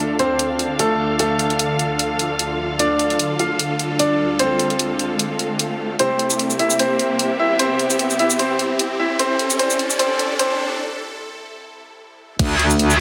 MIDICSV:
0, 0, Header, 1, 7, 480
1, 0, Start_track
1, 0, Tempo, 400000
1, 1433, Time_signature, 4, 2, 24, 8
1, 15604, End_track
2, 0, Start_track
2, 0, Title_t, "String section"
2, 0, Program_c, 0, 48
2, 0, Note_on_c, 0, 62, 74
2, 0, Note_on_c, 0, 69, 61
2, 0, Note_on_c, 0, 77, 73
2, 7191, Note_on_c, 0, 60, 78
2, 7194, Note_off_c, 0, 77, 0
2, 7620, Note_on_c, 0, 76, 76
2, 7734, Note_on_c, 0, 67, 82
2, 7836, Note_off_c, 0, 62, 0
2, 8248, Note_off_c, 0, 69, 0
2, 11442, Note_on_c, 0, 74, 77
2, 11586, Note_off_c, 0, 76, 0
2, 12952, Note_off_c, 0, 60, 0
2, 12953, Note_off_c, 0, 67, 0
2, 12953, Note_off_c, 0, 74, 0
2, 15604, End_track
3, 0, Start_track
3, 0, Title_t, "Grand piano"
3, 0, Program_c, 1, 0
3, 0, Note_on_c, 1, 57, 72
3, 0, Note_on_c, 1, 69, 91
3, 146, Note_off_c, 1, 57, 0
3, 146, Note_off_c, 1, 69, 0
3, 233, Note_on_c, 1, 60, 72
3, 233, Note_on_c, 1, 72, 86
3, 865, Note_off_c, 1, 60, 0
3, 865, Note_off_c, 1, 72, 0
3, 954, Note_on_c, 1, 57, 73
3, 954, Note_on_c, 1, 69, 86
3, 1368, Note_off_c, 1, 69, 0
3, 1369, Note_off_c, 1, 57, 0
3, 1434, Note_on_c, 1, 57, 72
3, 1436, Note_on_c, 1, 69, 90
3, 3266, Note_off_c, 1, 57, 0
3, 3267, Note_off_c, 1, 69, 0
3, 3353, Note_on_c, 1, 62, 74
3, 3353, Note_on_c, 1, 74, 95
3, 3985, Note_off_c, 1, 62, 0
3, 3986, Note_off_c, 1, 74, 0
3, 4073, Note_on_c, 1, 65, 75
3, 4073, Note_on_c, 1, 77, 91
3, 4706, Note_off_c, 1, 65, 0
3, 4706, Note_off_c, 1, 77, 0
3, 4792, Note_on_c, 1, 74, 89
3, 4793, Note_on_c, 1, 62, 78
3, 5208, Note_off_c, 1, 62, 0
3, 5208, Note_off_c, 1, 74, 0
3, 5273, Note_on_c, 1, 72, 94
3, 5274, Note_on_c, 1, 60, 73
3, 7106, Note_off_c, 1, 60, 0
3, 7106, Note_off_c, 1, 72, 0
3, 7194, Note_on_c, 1, 72, 89
3, 7195, Note_on_c, 1, 60, 69
3, 7826, Note_off_c, 1, 60, 0
3, 7826, Note_off_c, 1, 72, 0
3, 7913, Note_on_c, 1, 64, 69
3, 7913, Note_on_c, 1, 76, 84
3, 8136, Note_off_c, 1, 64, 0
3, 8136, Note_off_c, 1, 76, 0
3, 8154, Note_on_c, 1, 60, 71
3, 8154, Note_on_c, 1, 72, 89
3, 8786, Note_off_c, 1, 60, 0
3, 8786, Note_off_c, 1, 72, 0
3, 8873, Note_on_c, 1, 64, 69
3, 8873, Note_on_c, 1, 76, 87
3, 9095, Note_off_c, 1, 64, 0
3, 9096, Note_off_c, 1, 76, 0
3, 9113, Note_on_c, 1, 60, 74
3, 9114, Note_on_c, 1, 72, 96
3, 9745, Note_off_c, 1, 60, 0
3, 9746, Note_off_c, 1, 72, 0
3, 9833, Note_on_c, 1, 76, 89
3, 9834, Note_on_c, 1, 64, 73
3, 10056, Note_off_c, 1, 64, 0
3, 10056, Note_off_c, 1, 76, 0
3, 10072, Note_on_c, 1, 60, 73
3, 10073, Note_on_c, 1, 72, 92
3, 10705, Note_off_c, 1, 60, 0
3, 10706, Note_off_c, 1, 72, 0
3, 10794, Note_on_c, 1, 64, 76
3, 10795, Note_on_c, 1, 76, 90
3, 11016, Note_off_c, 1, 64, 0
3, 11016, Note_off_c, 1, 76, 0
3, 11032, Note_on_c, 1, 60, 74
3, 11032, Note_on_c, 1, 72, 97
3, 11493, Note_off_c, 1, 60, 0
3, 11493, Note_off_c, 1, 72, 0
3, 11511, Note_on_c, 1, 60, 74
3, 11511, Note_on_c, 1, 72, 99
3, 11974, Note_off_c, 1, 60, 0
3, 11974, Note_off_c, 1, 72, 0
3, 11992, Note_on_c, 1, 60, 76
3, 11992, Note_on_c, 1, 72, 96
3, 12454, Note_off_c, 1, 72, 0
3, 12455, Note_off_c, 1, 60, 0
3, 12472, Note_on_c, 1, 72, 100
3, 12473, Note_on_c, 1, 60, 79
3, 12935, Note_off_c, 1, 60, 0
3, 12935, Note_off_c, 1, 72, 0
3, 15604, End_track
4, 0, Start_track
4, 0, Title_t, "Supersaw synth"
4, 0, Program_c, 2, 81
4, 0, Note_on_c, 2, 38, 81
4, 0, Note_on_c, 2, 50, 73
4, 0, Note_on_c, 2, 65, 77
4, 0, Note_on_c, 2, 69, 91
4, 7145, Note_off_c, 2, 38, 0
4, 7145, Note_off_c, 2, 65, 0
4, 7145, Note_off_c, 2, 69, 0
4, 7146, Note_off_c, 2, 50, 0
4, 7193, Note_on_c, 2, 36, 82
4, 7193, Note_on_c, 2, 48, 73
4, 7193, Note_on_c, 2, 64, 73
4, 7194, Note_on_c, 2, 67, 92
4, 10995, Note_off_c, 2, 67, 0
4, 11033, Note_on_c, 2, 69, 94
4, 14825, Note_off_c, 2, 36, 0
4, 14825, Note_off_c, 2, 48, 0
4, 14825, Note_off_c, 2, 64, 0
4, 14835, Note_off_c, 2, 69, 0
4, 15604, End_track
5, 0, Start_track
5, 0, Title_t, "Wobble bass"
5, 0, Program_c, 3, 39
5, 14873, Note_on_c, 3, 38, 97
5, 15576, Note_off_c, 3, 38, 0
5, 15604, End_track
6, 0, Start_track
6, 0, Title_t, "Riser"
6, 0, Program_c, 4, 103
6, 0, Note_on_c, 4, 60, 75
6, 12953, Note_off_c, 4, 60, 0
6, 15604, End_track
7, 0, Start_track
7, 0, Title_t, "Drums"
7, 231, Note_on_c, 9, 42, 52
7, 351, Note_off_c, 9, 42, 0
7, 471, Note_on_c, 9, 42, 76
7, 591, Note_off_c, 9, 42, 0
7, 712, Note_on_c, 9, 42, 52
7, 832, Note_off_c, 9, 42, 0
7, 952, Note_on_c, 9, 42, 76
7, 1072, Note_off_c, 9, 42, 0
7, 1432, Note_on_c, 9, 42, 74
7, 1552, Note_off_c, 9, 42, 0
7, 1672, Note_on_c, 9, 42, 54
7, 1792, Note_off_c, 9, 42, 0
7, 1803, Note_on_c, 9, 42, 37
7, 1912, Note_off_c, 9, 42, 0
7, 1912, Note_on_c, 9, 42, 78
7, 2032, Note_off_c, 9, 42, 0
7, 2152, Note_on_c, 9, 42, 52
7, 2272, Note_off_c, 9, 42, 0
7, 2392, Note_on_c, 9, 42, 76
7, 2512, Note_off_c, 9, 42, 0
7, 2632, Note_on_c, 9, 42, 52
7, 2752, Note_off_c, 9, 42, 0
7, 2872, Note_on_c, 9, 42, 78
7, 2992, Note_off_c, 9, 42, 0
7, 3352, Note_on_c, 9, 42, 76
7, 3472, Note_off_c, 9, 42, 0
7, 3592, Note_on_c, 9, 42, 51
7, 3712, Note_off_c, 9, 42, 0
7, 3724, Note_on_c, 9, 42, 36
7, 3833, Note_off_c, 9, 42, 0
7, 3833, Note_on_c, 9, 42, 78
7, 3953, Note_off_c, 9, 42, 0
7, 4073, Note_on_c, 9, 42, 51
7, 4193, Note_off_c, 9, 42, 0
7, 4313, Note_on_c, 9, 42, 78
7, 4433, Note_off_c, 9, 42, 0
7, 4553, Note_on_c, 9, 42, 53
7, 4673, Note_off_c, 9, 42, 0
7, 4792, Note_on_c, 9, 42, 76
7, 4912, Note_off_c, 9, 42, 0
7, 5273, Note_on_c, 9, 42, 74
7, 5393, Note_off_c, 9, 42, 0
7, 5513, Note_on_c, 9, 42, 51
7, 5633, Note_off_c, 9, 42, 0
7, 5643, Note_on_c, 9, 42, 35
7, 5752, Note_off_c, 9, 42, 0
7, 5752, Note_on_c, 9, 42, 77
7, 5872, Note_off_c, 9, 42, 0
7, 5992, Note_on_c, 9, 42, 49
7, 6112, Note_off_c, 9, 42, 0
7, 6232, Note_on_c, 9, 42, 76
7, 6352, Note_off_c, 9, 42, 0
7, 6472, Note_on_c, 9, 42, 51
7, 6592, Note_off_c, 9, 42, 0
7, 6712, Note_on_c, 9, 42, 74
7, 6832, Note_off_c, 9, 42, 0
7, 7192, Note_on_c, 9, 42, 70
7, 7312, Note_off_c, 9, 42, 0
7, 7432, Note_on_c, 9, 42, 49
7, 7552, Note_off_c, 9, 42, 0
7, 7563, Note_on_c, 9, 42, 35
7, 7563, Note_on_c, 9, 82, 78
7, 7672, Note_off_c, 9, 42, 0
7, 7672, Note_on_c, 9, 42, 70
7, 7683, Note_off_c, 9, 82, 0
7, 7792, Note_off_c, 9, 42, 0
7, 7803, Note_on_c, 9, 82, 58
7, 7913, Note_on_c, 9, 42, 50
7, 7923, Note_off_c, 9, 82, 0
7, 8033, Note_off_c, 9, 42, 0
7, 8043, Note_on_c, 9, 82, 76
7, 8152, Note_on_c, 9, 42, 76
7, 8163, Note_off_c, 9, 82, 0
7, 8272, Note_off_c, 9, 42, 0
7, 8393, Note_on_c, 9, 42, 50
7, 8513, Note_off_c, 9, 42, 0
7, 8632, Note_on_c, 9, 42, 73
7, 8752, Note_off_c, 9, 42, 0
7, 9112, Note_on_c, 9, 42, 75
7, 9232, Note_off_c, 9, 42, 0
7, 9353, Note_on_c, 9, 42, 50
7, 9473, Note_off_c, 9, 42, 0
7, 9483, Note_on_c, 9, 42, 36
7, 9483, Note_on_c, 9, 82, 83
7, 9592, Note_off_c, 9, 42, 0
7, 9592, Note_on_c, 9, 42, 75
7, 9603, Note_off_c, 9, 82, 0
7, 9712, Note_off_c, 9, 42, 0
7, 9722, Note_on_c, 9, 82, 58
7, 9832, Note_on_c, 9, 42, 48
7, 9842, Note_off_c, 9, 82, 0
7, 9952, Note_off_c, 9, 42, 0
7, 9962, Note_on_c, 9, 82, 83
7, 10072, Note_on_c, 9, 42, 72
7, 10082, Note_off_c, 9, 82, 0
7, 10192, Note_off_c, 9, 42, 0
7, 10312, Note_on_c, 9, 42, 50
7, 10432, Note_off_c, 9, 42, 0
7, 10552, Note_on_c, 9, 42, 74
7, 10672, Note_off_c, 9, 42, 0
7, 11032, Note_on_c, 9, 42, 72
7, 11152, Note_off_c, 9, 42, 0
7, 11273, Note_on_c, 9, 42, 53
7, 11393, Note_off_c, 9, 42, 0
7, 11403, Note_on_c, 9, 42, 37
7, 11403, Note_on_c, 9, 82, 85
7, 11512, Note_off_c, 9, 42, 0
7, 11512, Note_on_c, 9, 42, 79
7, 11523, Note_off_c, 9, 82, 0
7, 11632, Note_off_c, 9, 42, 0
7, 11643, Note_on_c, 9, 82, 63
7, 11752, Note_on_c, 9, 42, 49
7, 11763, Note_off_c, 9, 82, 0
7, 11872, Note_off_c, 9, 42, 0
7, 11883, Note_on_c, 9, 82, 84
7, 11992, Note_on_c, 9, 42, 75
7, 12003, Note_off_c, 9, 82, 0
7, 12112, Note_off_c, 9, 42, 0
7, 12233, Note_on_c, 9, 42, 53
7, 12353, Note_off_c, 9, 42, 0
7, 12472, Note_on_c, 9, 42, 80
7, 12592, Note_off_c, 9, 42, 0
7, 14873, Note_on_c, 9, 36, 120
7, 14873, Note_on_c, 9, 42, 78
7, 14873, Note_on_c, 9, 49, 103
7, 14993, Note_off_c, 9, 36, 0
7, 14993, Note_off_c, 9, 42, 0
7, 14993, Note_off_c, 9, 49, 0
7, 15113, Note_on_c, 9, 42, 56
7, 15233, Note_off_c, 9, 42, 0
7, 15243, Note_on_c, 9, 82, 80
7, 15353, Note_on_c, 9, 42, 83
7, 15363, Note_off_c, 9, 82, 0
7, 15473, Note_off_c, 9, 42, 0
7, 15483, Note_on_c, 9, 82, 59
7, 15603, Note_off_c, 9, 82, 0
7, 15604, End_track
0, 0, End_of_file